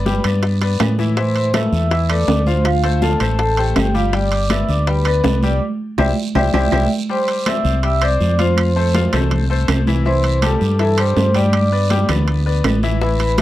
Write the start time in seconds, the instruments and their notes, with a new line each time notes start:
Already playing: fingered electric bass G1, vibraphone B4 B5
0.06 grand piano G3 G4 G5, high bongo, high conga, low timbale, short guiro
0.24 fingered electric bass G2, grand piano B3 B4 D5, high bongo, high conga, high timbale, short guiro, claves
0.43 high bongo, high timbale, long guiro
0.61 grand piano B3 B4 D5, high bongo, high conga, high timbale
0.80 fingered electric bass A2, high bongo, low bongo, high conga, high timbale, low timbale, short guiro, claves
0.99 grand piano E3 E4 E5, high bongo, high conga, short guiro
1.17 grand piano E3 E4 E5, vibraphone C5 C6, high bongo, high timbale, long guiro
1.35 high conga, high timbale
1.54 grand piano A3 A4 B4, vibraphone E5 E6, high bongo, high conga, high timbale, low timbale, short guiro, claves
1.72 fingered electric bass E2, high conga, short guiro
1.91 grand piano E3 E4 E5, vibraphone E5 E6, high bongo, high conga, high timbale, long guiro
2.09 grand piano A3 A4 B4, vibraphone D5 D6, high conga, high timbale, claves
2.28 fingered electric bass D2, high bongo, low bongo, high conga, low timbale, short guiro
2.46 grand piano F3 F4 F5, vibraphone C5 C6, high conga, short guiro
2.64 vibraphone F4 F5, high bongo, high conga, high timbale, long guiro, claves
2.83 grand piano A3 A4 C5, high conga, high timbale
3.02 grand piano F3 F4 F5, vibraphone A4 A5, high bongo, high conga, low timbale, short guiro
3.20 fingered electric bass A1, grand piano A3 A4 C5, high bongo, high conga, high timbale, short guiro, claves
3.39 vibraphone A4 A5, high bongo, high conga, high timbale, long guiro
3.57 grand piano A3 A4 C5, vibraphone G4 G5, high bongo, high conga, high timbale
3.76 fingered electric bass G1, high bongo, low bongo, high conga, high timbale, low timbale, short guiro, claves
3.94 grand piano G3 G4 G5, vibraphone F4 F5, high bongo, high conga, short guiro
4.13 grand piano G3 G4 G5, vibraphone D5 D6, high bongo, high conga, high timbale, long guiro
4.32 high conga, high timbale
4.50 grand piano B3 B4 D5, vibraphone E5 E6, high bongo, high conga, high timbale, low timbale, short guiro, claves
4.69 fingered electric bass D2, vibraphone D5 D6, high conga, short guiro
4.87 grand piano G3 G4 G5, vibraphone B4 B5, high bongo, high timbale, long guiro
5.05 grand piano B3 B4 D5, high conga, high timbale, claves
5.24 fingered electric bass C2, high bongo, low bongo, high conga, low timbale, short guiro
5.43 grand piano G3 G4 G5, vibraphone D5 D6, high conga, short guiro
5.98 fingered electric bass C2, grand piano E4 G4 C5, vibraphone D5 E5 G5, low bongo, high conga, high timbale, long guiro, claves
6.35 fingered electric bass C2, grand piano E4 G4 C5, vibraphone D5 E5 G5, low bongo, high conga, high timbale, long guiro, claves
6.53 fingered electric bass C2, grand piano E4 G4 C5, vibraphone D5 E5 G5, low bongo, high conga, high timbale, long guiro, claves
6.72 fingered electric bass C2, grand piano E4 G4 C5, vibraphone D5 E5 G5, low bongo, high conga, high timbale, long guiro, claves
7.09 grand piano G3 G4 G5, vibraphone C5 C6, high conga, long guiro
7.28 high conga, high timbale
7.46 grand piano C4 C5 D5, vibraphone E5 E6, high conga, high timbale, short guiro, claves
7.65 fingered electric bass C2, short guiro
7.83 grand piano G3 G4 G5, vibraphone E5 E6, high conga, high timbale, long guiro
8.02 grand piano C4 C5 D5, vibraphone D5 D6, high conga, high timbale, claves
8.20 fingered electric bass F2, high conga, short guiro
8.39 grand piano F3 F4 F5, vibraphone C5 C6, high conga, high timbale, short guiro
8.57 high conga, high timbale, long guiro, claves
8.76 grand piano A3 A4 C5, high conga
8.94 grand piano F3 F4 F5, high conga, high timbale, short guiro
9.13 fingered electric bass C2, grand piano A3 A4 C5, high conga, low conga, high timbale, short guiro, claves
9.31 high conga, low conga, high timbale, long guiro
9.50 grand piano A3 A4 C5, high conga
9.68 fingered electric bass C2, high conga, high timbale, low timbale, short guiro, claves
9.87 grand piano E3 E4 E5, high conga, short guiro
10.05 grand piano E3 E4 E5, vibraphone C5 C6, high conga, long guiro
10.24 high conga, high timbale
10.42 grand piano G3 G4 A4, vibraphone A4 A5, high conga, high timbale, short guiro, claves
10.61 fingered electric bass G2, short guiro
10.79 grand piano E3 E4 E5, vibraphone A4 A5, high timbale, long guiro
10.98 grand piano G3 G4 A4, vibraphone C5 C6, high timbale, claves
11.16 fingered electric bass G2, high conga, low timbale, short guiro
11.34 grand piano G3 G4 G5, vibraphone D5 D6, high conga, high timbale, short guiro
11.53 high conga, high timbale, long guiro, claves
11.72 grand piano B3 B4 D5
11.90 grand piano G3 G4 G5, high conga, high timbale, short guiro
12.09 fingered electric bass D2, grand piano B3 B4 D5, high conga, low conga, high timbale, short guiro, claves
12.28 high conga, high timbale, long guiro
12.46 grand piano B3 B4 D5
12.64 fingered electric bass A1, high conga, high timbale, low timbale, short guiro, claves
12.83 grand piano E3 E4 E5, high conga, short guiro
13.01 grand piano E3 E4 E5, vibraphone B4 B5, high bongo, high conga, long guiro
13.20 high bongo, high conga, high timbale
13.38 grand piano A3 A4, vibraphone E5, high bongo, high conga, high timbale, short guiro, claves